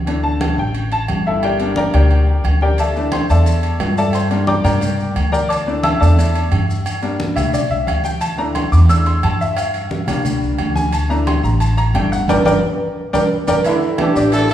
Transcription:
Already playing: D2
0.07 E3 A3 D4, high conga, low agogo
0.23 A5, high conga
0.41 high conga, low agogo
0.58 A1 G5, high conga
0.75 high conga, low agogo
0.92 A5, high conga, low agogo
1.08 G1, high conga, low agogo
1.26 E4 A4 E5, high conga
1.43 G4 A#4 D5 G5, high conga, low agogo
1.59 G3 A#3 D4, high conga, low agogo
1.76 A#4 D5 G5 A#5, high conga
1.94 D2 G4 A#4 D5 G5, high conga, low conga, low agogo
2.10 high conga, low agogo
2.27 high conga
2.44 D2, high conga, low agogo
2.61 G4 A#4 D5 G5, high conga
2.78 A4 D5 E5 A5, high conga, low agogo, maracas
2.95 E3 A3 D4, high conga, maracas
3.12 C5 C6, high conga, low agogo, maracas
3.29 E2 A4 D5 E5 A5, high conga, maracas
3.46 high conga, low agogo, maracas
3.63 high conga, low agogo, maracas
3.80 G2, high conga, low timbale, low agogo, maracas
3.97 A4 D5 E5 A5, high conga, maracas
4.13 C5 C6, high conga, low agogo, maracas
4.30 G3 A#3 D4, high conga, low agogo, maracas
4.47 D5 G5 A#5 D6, high conga, maracas
4.64 G2 A#4 D5 G5 A#5, high conga, low conga, low agogo, maracas
4.81 high conga, low conga, low agogo, maracas
4.99 high conga, maracas
5.16 D2, high conga, low agogo, maracas
5.32 A#4 D5 G5 A#5, high conga, maracas
5.49 D5 A5 D6, high conga, low agogo, maracas
5.66 E3 A3 D4, high conga, maracas
5.83 E5 A5 E6, high conga, low agogo, maracas
6.00 E2 A4 D5 E5 A5, high conga, maracas
6.17 E3 A3 D4, high conga, low agogo, maracas
6.35 high conga, low agogo, maracas
6.51 G2, high conga, low agogo, maracas
6.69 high conga, maracas
6.86 high conga, low agogo, maracas
7.02 G3 A#3 D4, high conga, low agogo, maracas
7.20 high conga, maracas
7.36 D2 E5, high conga, low conga, low agogo, maracas
7.53 D5, high conga, low conga, low agogo, maracas
7.70 C2 E5, high conga, maracas
7.87 D2 F5, high conga, low agogo, maracas
8.04 G5, high conga, maracas
8.21 A5, high conga, low agogo, maracas
8.38 E3 A3 D4 A#5, high conga, maracas
8.55 C6, high conga, low agogo, maracas
8.72 E2 D6, high conga, maracas
8.89 E3 A3 D4 E6, high conga, low agogo, maracas
9.06 C6, high conga, low agogo, maracas
9.23 G2 A5, high conga, low agogo, maracas
9.41 E5, high conga, maracas
9.57 F5, high conga, low agogo, maracas
9.74 high conga, low agogo, maracas
9.91 high conga, maracas
10.07 D2 G3 A#3 D4, high conga, low conga, low agogo, maracas
10.25 high conga, low conga, low agogo, maracas
10.42 C2, high conga, maracas
10.58 D2, high conga, low agogo, maracas
10.76 G#5, high conga, maracas
10.92 A5, high conga, low agogo, maracas
11.09 E3 A3 D4 A#5, high conga, maracas
11.27 C6, high conga, low agogo, maracas
11.43 A1 A#5, high conga, maracas
11.60 A5, high conga, low agogo, maracas
11.77 A#5, high conga, low agogo, maracas
11.94 G1 E3 A3 D4 G5, high conga, low agogo, maracas
12.12 F#5, high conga, maracas
12.28 G1 A#4 D5 G5, high conga, high timbale, maracas
12.45 G1 A#4 D5 G5, high conga, high timbale, maracas
13.13 G1 A#4 D5 G5, high conga, high timbale, maracas
13.47 G1 A#4 D5 G5, high conga, high timbale, maracas
13.64 D3 E3 A3 E4 E5, high conga, low agogo, maracas
13.82 high conga, maracas
13.98 E3 A3 D4 G4 A4 A5, high conga, low agogo, maracas
14.16 A1 D4 D5 D6, high conga, maracas
14.32 E3 D4 A4, high conga, low agogo, maracas
14.49 E4, high conga, low agogo

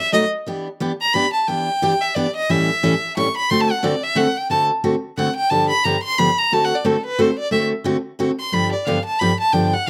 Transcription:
0.00 E5
0.12 B2 F#3 A3 D#4 F#4 D#5
0.46 E3 B3 D4 G4
0.80 E3 B3 D4 G4
1.01 A#5
1.14 E3 B3 D4 G4 B5
1.33 A5
1.48 E3 B3 D4 G4 G5
1.82 E3 B3 D4 G4
2.01 E5
2.15 E3 B3 D4 G4 D5
2.36 D#5
2.49 A2 E3 G3 C#4 E4 A4 E5
2.83 A2 E3 G3 C#4 E4 A4
3.17 A2 E3 G3 C#4 E4 A4 C#6
3.37 B5
3.50 D3 A3 C4 F#4 A4 C6
3.61 A5
3.71 F#5
3.83 D3 A3 C4 F#4 A4 D5
4.03 E5
4.15 D3 A3 C4 F#4 A4 F#5
4.37 G5
4.50 D3 A3 C4 F#4 A4 A5
4.84 D3 A3 C4 F#4 A4
5.17 D3 A3 C4 F#4 A4 F#5
5.36 G5
5.50 G2 D3 F3 B3 D4 G4 A5
5.69 B5
5.84 G2 D3 F3 B3 D4 G4 A#5
6.03 C6
6.18 G2 D3 F3 B3 D4 G4 B5
6.38 A#5
6.52 D3 A3 C4 F#4 A4 A5
6.65 F#5
6.75 D5
6.85 D3 A3 C4 F#4 A4
7.06 B4
7.18 D3 A3 C4 F#4 A4 C5
7.39 D5
7.51 D3 A3 C4 F#4 A4 E5
7.84 D3 A3 C4 F#4 A4
8.19 D3 A3 C4 F#4 A4
8.39 C6
8.52 G2 D3 F3 B3 D4 G4 B5
8.72 D5
8.86 G2 D3 F3 B3 D4 G4 F5
9.05 A5
9.20 G2 D3 F3 B3 D4 G4 B5
9.40 A5
9.52 G2 D3 F3 B3 D4 G4 G5
9.73 F#5
9.86 F5

